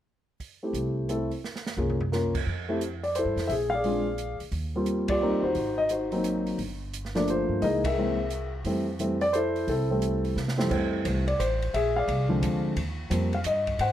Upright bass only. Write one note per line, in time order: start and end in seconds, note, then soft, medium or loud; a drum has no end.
0.73 1.29 C2 medium
1.77 2.32 C2 medium
2.46 3.23 F2 medium
3.25 3.36 G2 medium
3.36 3.48 F2 medium
3.49 4.36 A#1 medium
4.41 muted upright bass stroke soft
4.52 5.39 D#2 medium
5.43 5.55 D#2 medium
5.55 6.54 G#1 medium
6.58 7.45 G1 medium
7.49 7.60 G2 medium
7.62 8.61 C2 medium
8.64 9.64 F2 medium
9.67 10.32 C2 medium
10.36 10.68 C3 medium
10.71 11.04 F2 medium
11.05 11.38 C2 medium
11.39 11.72 A1 medium
11.74 12.07 A#1 medium
12.08 12.41 C2 medium
12.42 12.76 D2 medium
12.76 13.10 D#2 medium
13.11 13.44 F2 medium
13.45 13.78 G2 medium
13.79 13.92 G#2 medium